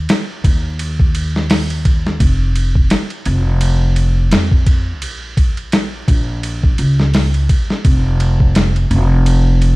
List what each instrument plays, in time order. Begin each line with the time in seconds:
0.09 snare, ride
0.44 upright bass D#2, kick, ride
0.79 ride
1.00 kick
1.15 ride
1.36 snare
1.50 snare, open hi-hat
1.70 ride
1.85 kick, ride
2.06 snare
2.20 upright bass F1, kick, ride
2.56 ride
2.75 kick
2.90 snare, ride
3.10 ride
3.25 upright bass F1, ride
3.61 ride
3.96 ride
4.31 upright bass F2, snare, ride
4.51 kick
4.67 kick, ride
5.02 upright bass A#1, ride
5.37 kick, ride
5.57 ride
5.72 snare, ride
6.08 upright bass A#1, kick, ride
6.43 ride
6.63 kick
6.78 upright bass C#2, ride
7.00 snare
7.14 snare, open hi-hat
7.34 ride
7.49 kick, ride
7.70 snare
7.85 upright bass F1, kick, ride
8.20 ride
8.40 kick
8.55 snare, ride
8.76 ride
8.91 upright bass F1, ride
9.26 ride
9.62 ride